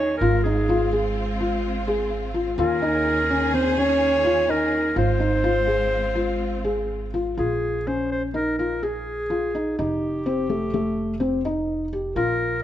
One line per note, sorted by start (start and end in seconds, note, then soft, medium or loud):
0.00 0.17 D#2 medium
0.00 0.18 D#3 medium
0.00 0.18 C#4 medium
0.00 0.12 D#4 medium
0.00 0.18 G#4 medium
0.00 0.17 C#5 medium
0.17 2.55 G#1 medium
0.17 2.57 F4 medium
0.17 0.41 A#4 medium
0.21 2.57 G#3 medium
0.21 2.57 C4 medium
0.21 0.41 F4 medium
0.43 0.64 D#4 medium
0.43 1.11 G#4 medium
0.69 0.88 F4 medium
0.92 1.31 G#4 medium
1.40 1.79 F4 medium
1.87 2.26 G#4 medium
2.34 2.54 F4 medium
2.58 4.92 D#2 medium
2.58 4.94 D#3 medium
2.58 4.94 C#4 medium
2.58 2.78 F4 medium
2.58 4.94 G#4 medium
2.58 3.50 A#4 loud
2.82 3.21 D#4 medium
3.30 3.50 C#4 medium
3.54 3.73 C4 medium
3.54 3.81 C5 medium
3.78 4.17 C#4 medium
3.78 4.52 C#5 loud
4.25 4.44 F4 medium
4.49 4.88 D#4 medium
4.49 4.97 A#4 medium
4.95 7.35 G#1 medium
4.95 7.36 G#3 medium
4.95 7.36 C4 medium
4.95 7.36 F4 medium
4.95 5.16 F4 medium
4.95 6.87 C5 medium
5.20 5.39 D#4 medium
5.44 5.64 F4 medium
5.67 6.07 G#4 medium
6.15 6.56 F4 medium
6.64 7.05 G#4 medium
7.14 7.34 F4 medium
7.37 9.74 A#1 medium
7.37 7.78 F4 medium
7.37 7.88 G#4 medium
7.87 8.26 C#4 medium
7.87 8.11 C5 medium
8.12 8.22 C5 medium
8.34 8.54 D#4 medium
8.34 8.57 A#4 medium
8.58 8.79 F4 medium
8.58 8.85 A#4 medium
8.83 9.22 G#4 medium
8.83 9.78 G#4 medium
9.30 9.50 F4 medium
9.55 9.74 D#4 medium
9.79 12.13 F1 medium
9.79 10.18 D#4 medium
9.79 11.65 G4 medium
10.26 10.46 C4 medium
10.49 10.69 A3 medium
10.74 11.13 A3 medium
11.20 11.40 C4 medium
11.45 11.84 D#4 medium
11.93 12.12 G4 medium
12.15 12.63 A#1 medium
12.15 12.55 F4 medium
12.15 12.60 A#4 medium